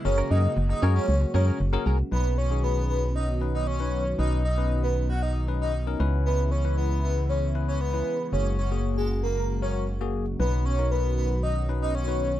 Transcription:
Already playing: analog synth pad C#3 G#3
0.05 fm bass F#1, analog synth pad F#3 A#3 F#4, tine electric piano C#4 F#4 G#4 A#4, digital synth lead C#5, muted clean electric guitar stroke
0.18 clean electric guitar C#4 G#4 A#4
0.31 fm bass F#2, clean electric guitar C#4 G#4 A#4, digital synth lead D#5
0.44 muted clean electric guitar stroke
0.57 fm bass F#1, muted clean electric guitar stroke
0.69 digital synth lead D#5, muted clean electric guitar stroke
0.82 fm bass F#2, tine electric piano C#4 F#4 G#4 C#5, clean electric guitar C#4 G#4 A#4
0.95 clean electric guitar C#4 G#4 A#4, digital synth lead C#5
1.08 fm bass C#2
1.21 muted clean electric guitar stroke
1.34 fm bass F#2, tine electric piano C#4 F#4 G#4 C#5, clean electric guitar C#4 G#4 A#4, digital synth lead C#5
1.47 clean electric guitar C#4 G#4 A#4
1.60 fm bass F#1, muted clean electric guitar stroke
1.73 tine electric piano C#4 F#4 G#4 A#4, clean electric guitar C#4 G#4 A#4
1.86 fm bass C2, clean electric guitar C#4 G#4 A#4
1.99 muted clean electric guitar stroke
2.12 fm bass B1, analog synth pad D#3 F#3 B3 C#4 F#4, tine electric piano C#4 D#4 B4, digital synth lead B4
2.38 digital synth lead C#5
2.50 tine electric piano C#4 D#4 G#4
2.64 digital synth lead B4
2.89 digital synth lead B4
3.16 digital synth lead D#5
3.41 tine electric piano C#4 D#4 B4
3.54 digital synth lead D#5
3.67 digital synth lead C#5
3.80 tine electric piano C#4 D#4 B4
4.19 fm bass B1, tine electric piano C#4 D#4 B4, analog synth pad D#4, digital synth lead D#5
4.45 digital synth lead D#5
4.57 tine electric piano C#4 D#4 B4
4.83 digital synth lead B4
5.10 digital synth lead F#5
5.23 digital synth lead D#5
5.48 tine electric piano C#4 D#4 B4
5.61 digital synth lead D#5
5.87 tine electric piano C#4 D#4 A#4
6.00 fm bass C#2, analog synth pad C#3 E3 G#3 E4, tine electric piano C#4 E4 B4
6.26 digital synth lead B4
6.51 digital synth lead C#5
6.64 tine electric piano C#4 E4 B4
6.77 digital synth lead B4
7.03 digital synth lead B4
7.29 digital synth lead C#5
7.55 tine electric piano C#4 E4 B4
7.68 digital synth lead C#5
7.81 digital synth lead B4
7.94 tine electric piano C#4 E4 B4
8.33 fm bass F#1, analog synth pad F#3 A#3 F#4, tine electric piano A#3 F#4 G#4, digital synth lead C#5
8.59 digital synth lead C#5
8.71 tine electric piano A#3 F#4 G#4
8.97 digital synth lead G#4
9.23 digital synth lead A#4
9.62 tine electric piano A#3 F#4 A#4, digital synth lead C#5
10.01 tine electric piano A#3 F#4 G#4
10.39 fm bass B1, analog synth pad D#3 B3 C#4, tine electric piano C#4 D#4 B4, digital synth lead B4
10.66 digital synth lead C#5
10.78 tine electric piano C#4 D#4 A#4
10.92 digital synth lead B4
11.17 digital synth lead B4
11.43 digital synth lead D#5
11.69 tine electric piano C#4 D#4 B4
11.82 digital synth lead D#5
11.95 digital synth lead C#5
12.08 tine electric piano C#4 D#4 B4

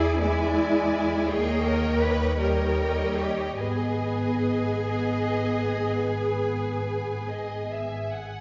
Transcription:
Already playing: double bass section E2, viola section E4, cello section G#4, violin section D5 G#5
0.21 viola section G#3, cello section E4, violin section D5 G#5
1.29 double bass section D#2, viola section A#3, cello section G#4, violin section C#5 D#5 G5
1.66 cello section A#4
2.02 cello section B4
2.39 viola section G3, cello section A#4, violin section C#5 D#5 G5
3.18 cello section G4
3.58 double bass section G#1, viola section B3, cello section G#4, violin section B4 D#5 G#5
4.80 violin section D#5
6.05 violin section B4
7.30 violin section D#5
7.70 violin section E5
8.12 violin section F#5

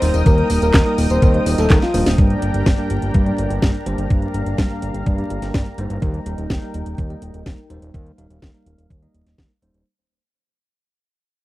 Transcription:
Already playing: analog synth pad A#4 D#5 G5 D#6, soft synth lead C5
0.02 analog synth bass D#1, tine electric piano G3 A#3 D#4 C5, open hi-hat, tambourine
0.14 analog synth bass D#1, closed hi-hat, tambourine
0.26 analog synth bass D#2, soft synth lead A#4, kick, closed hi-hat, tambourine
0.38 closed hi-hat
0.50 analog synth bass D#1, tine electric piano G3 A#3 D#4 A#4, open hi-hat, tambourine
0.62 analog synth bass D#1, soft synth lead A#4, closed hi-hat, tambourine
0.74 analog synth bass D#2, kick, snare, clap, closed hi-hat, tambourine
0.86 tine electric piano G3 A#3 D#4 A#4, closed hi-hat
0.98 analog synth bass D#1, open hi-hat, tambourine
1.10 analog synth bass D#1, soft synth lead C5, closed hi-hat, tambourine
1.22 analog synth bass D#2, kick, closed hi-hat, tambourine
1.34 tine electric piano G3 A#3 D#4 D#5, closed hi-hat
1.46 analog synth bass D#1, open hi-hat, tambourine
1.58 analog synth bass D#1, soft synth lead A4, snare, closed hi-hat, tambourine
1.70 analog synth bass D#2, tine electric piano G3 A#3 D#4 A#4, kick, snare, clap, closed hi-hat, tambourine
1.82 soft synth lead F4, snare, closed hi-hat
1.94 analog synth bass D#1, tine electric piano G2 G3 A#3 D4 C5, open hi-hat, tambourine
2.06 analog synth bass D#1, snare, open hi-hat, tambourine
2.18 analog synth bass G2, analog synth pad D4 G4 A#4 G5 A#5, kick, closed hi-hat
2.30 closed hi-hat
2.42 analog synth bass G1, tine electric piano G2 G3 A#3 D4 A#4, closed hi-hat
2.54 analog synth bass G1, closed hi-hat
2.66 analog synth bass G2, kick, snare, closed hi-hat
2.78 tine electric piano G2 G3 A#3 D4 A#4, closed hi-hat
2.90 analog synth bass G1, closed hi-hat
3.02 analog synth bass G1, closed hi-hat
3.14 analog synth bass G2, kick, closed hi-hat
3.26 tine electric piano G2 G3 A#3 D4 D5, closed hi-hat
3.38 analog synth bass G1, closed hi-hat
3.50 analog synth bass G1, closed hi-hat
3.62 tine electric piano G2 G3 A#3 D4 A#4, analog synth bass G2, kick, snare, closed hi-hat
3.74 closed hi-hat
3.86 analog synth bass G1, tine electric piano G2 G3 A#3 D4 C5, closed hi-hat
3.98 analog synth bass G1, closed hi-hat
4.10 analog synth bass G2, analog synth pad F5, kick, closed hi-hat
4.22 closed hi-hat
4.34 analog synth bass G1, tine electric piano G2 G3 A#3 D4 A#4, closed hi-hat
4.46 analog synth bass G1, closed hi-hat
4.58 analog synth bass G2, kick, snare, closed hi-hat
4.70 tine electric piano G2 G3 A#3 D4 A#4, closed hi-hat
4.82 analog synth bass G1, closed hi-hat
4.94 analog synth bass G1, closed hi-hat
5.06 analog synth bass G2, kick, closed hi-hat
5.18 tine electric piano G2 G3 A#3 D4 D5, closed hi-hat
5.30 analog synth bass G1, closed hi-hat
5.42 analog synth bass G1, snare, closed hi-hat
5.54 analog synth bass G2, tine electric piano G2 G3 A#3 D4 A#4, kick, snare, closed hi-hat
5.66 closed hi-hat
5.78 analog synth bass G1, tine electric piano G3 A#3 D#4 C5, closed hi-hat
5.90 analog synth bass G1, closed hi-hat
6.02 analog synth bass D#2, analog synth pad D#4 A#4 G5, kick, closed hi-hat
6.14 closed hi-hat
6.26 analog synth bass D#1, tine electric piano G3 A#3 D#4 A#4, closed hi-hat
6.38 analog synth bass D#1, closed hi-hat
6.50 analog synth bass D#2, kick, snare, closed hi-hat
6.62 tine electric piano G3 A#3 D#4 A#4, closed hi-hat
6.74 analog synth bass D#1, closed hi-hat
6.86 analog synth bass D#1, closed hi-hat
6.98 analog synth bass D#2, kick, closed hi-hat
7.10 tine electric piano G3 A#3 D#4 D#5, closed hi-hat
7.22 analog synth bass D#1, closed hi-hat
7.34 analog synth bass D#1, closed hi-hat
7.46 analog synth bass D#2, tine electric piano G3 A#3 D#4 A#4, kick, snare, closed hi-hat
7.58 closed hi-hat
7.70 analog synth bass D#1, tine electric piano G3 A#3 D#4 C5, closed hi-hat
7.82 analog synth bass D#1, closed hi-hat
7.94 analog synth bass D#2, analog synth pad F5, kick, closed hi-hat
8.06 closed hi-hat
8.18 analog synth bass D#1, tine electric piano G3 A#3 D#4 A#4, closed hi-hat
8.30 analog synth bass D#1, closed hi-hat
8.42 analog synth bass D#2, kick, snare, closed hi-hat
8.54 tine electric piano G3 A#3 D#4 A#4, closed hi-hat
8.66 analog synth bass D#1, closed hi-hat
8.78 analog synth bass D#1, closed hi-hat
8.90 analog synth bass D#2, kick, closed hi-hat
9.02 tine electric piano G3 A#3 D#4 D#5, closed hi-hat
9.14 analog synth bass D#1, closed hi-hat
9.26 analog synth bass D#1, snare, closed hi-hat
9.38 analog synth bass D#2, tine electric piano G3 A#3 D#4 A#4, kick, snare
9.62 analog synth bass D#1, tine electric piano G3 A#3 D#4 C5, closed hi-hat
9.74 analog synth bass D#1, closed hi-hat

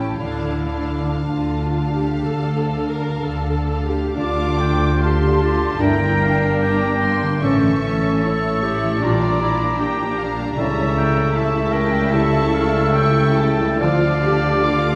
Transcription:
Already playing: harp A2 C#4 G4, viola section C#4, clarinet E4, violin section G5 A5
0.18 double bass section D2, cello section D3, harp D3, viola section D4, clarinet E4, violin section F5 A5
0.70 harp D4, viola section D4, violin section F5 A5
1.23 double bass section D2, cello section D3, clarinet D4, viola section F4, harp A4
1.73 harp D4, violin section F5 A5
1.93 viola section G4
2.25 double bass section D2, cello section D3, harp A3, viola section A4
2.73 harp D4, violin section F5 A5
2.91 viola section A#4
3.20 double bass section D2, cello section D3, harp A4, viola section A4
3.69 harp D4, violin section F5 A5
3.87 viola section G4
4.16 double bass section D2, harp D3, french horn section D3 D4, cello section D3, viola section D4, clarinet F4, violin section F5 D6, oboe A5, flute D6
4.38 harp A3
4.59 harp D4, violin section G5, oboe G5
4.80 harp F4
4.99 viola section G4, harp A4, oboe F5, violin section A5 C6, flute C6
5.20 harp F4
5.40 harp D4, viola section F4, clarinet G4, oboe A5
5.59 harp A3
5.78 double bass section G1, cello section G2, harp G2, french horn section D3 D4, viola section E4, clarinet A#4, violin section G5 A#5, oboe G5, flute A#5
6.00 harp D3
6.21 harp A#3, viola section D4, oboe F5
6.42 harp D4
6.61 harp G4, violin section G5 A#5, oboe G5, flute D6
7.03 harp A#3, violin section C6
7.23 harp D3
7.42 double bass section A1, harp A2, cello section A2, french horn section E3 C#4, viola section C#4, clarinet A4, violin section E5 C#6, oboe A5, flute C#6
7.63 harp E3
7.83 harp A3, viola section C#4, flute C#6
8.03 harp C#4
8.23 harp E4, viola section E4, violin section C#5 C#6, flute E6
8.43 harp C#4
8.63 harp A3, viola section E4, clarinet G4
8.83 harp E3
9.01 double bass section A#1, cello section A#2, harp A#2, french horn section G3 D4, viola section D4, clarinet F4, violin section D5 A#5, oboe A#5, flute D6
9.23 harp G3
9.42 clarinet E4
9.62 harp D4
9.80 clarinet G4, harp G4, violin section G5 A#5, oboe A#5
10.00 harp D4
10.18 harp A#3, violin section F5
10.39 harp G3
10.55 double bass section C#2, cello section C#3, harp C#3, french horn section G3 E4, viola section C#4, clarinet A4, violin section E5, oboe A5, flute C#6
10.77 harp G3
10.96 harp A3, viola section E4, oboe G5
11.16 harp E4
11.33 harp G4, violin section E5 A5, oboe E5, flute C#6
11.54 harp E4
11.72 harp A3, clarinet A#4, violin section G5
11.93 harp G3
12.12 harp C#3, french horn section G3 E4, clarinet A4, oboe E5, violin section A5 C#6, flute E6
12.33 harp A3
12.53 harp G3, oboe F5
12.73 harp E4
12.93 harp G4, violin section G5 C#6, oboe G5
13.15 harp E4
13.36 harp A3, violin section A5, oboe A5
13.60 harp G3
13.81 double bass section D2, harp D3, cello section D3, french horn section F3 F4, viola section F4, clarinet D5, violin section F5 A5, oboe F5, flute D6
14.03 harp A3
14.24 harp D4, viola section G4
14.43 harp F4
14.62 viola section F4, harp A4, violin section F5 D6, oboe F5
14.82 harp F4

